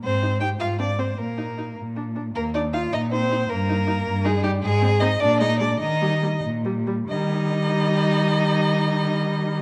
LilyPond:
<<
  \new Staff \with { instrumentName = "Violin" } { \time 6/8 \key ees \major \tempo 4. = 102 c''4 g''8 f''8 d''8 c''8 | bes'4. r4. | bes'8 d''8 f''8 ees''8 c''4 | bes'2 aes'8 g'8 |
aes'4 ees''8 d''8 ees''8 d''8 | ees''4. r4. | ees''2.~ | ees''2. | }
  \new Staff \with { instrumentName = "Viola" } { \time 6/8 \key ees \major r8 ees'8 ees'8 r8 c'8 c'8 | r8 ees'8 ees'8 r8 d'8 d'8 | r8 ees'8 ees'8 r8 ees'8 ees'8 | r8 ees'8 ees'8 r8 ees'8 ees'8 |
r8 c'8 c'8 r8 aes8 aes8 | r8 g8 g8 r8 g8 g8 | g2.~ | g2. | }
  \new Staff \with { instrumentName = "Violin" } { \time 6/8 \key ees \major c'4 g'8 f'8 d'8 c'8 | bes4. r4. | bes8 d'8 f'8 ees'8 c'4 | bes2 aes8 g8 |
aes4 ees'8 d'8 ees'8 d'8 | ees'4. r4. | ees'2.~ | ees'2. | }
  \new Staff \with { instrumentName = "Cello" } { \clef bass \time 6/8 \key ees \major aes,4. aes,4. | bes,4. bes,4. | ees,4. bes,4. | g,4. g,4. |
aes,4. bes,4. | ees4. bes,4. | ees2.~ | ees2. | }
>>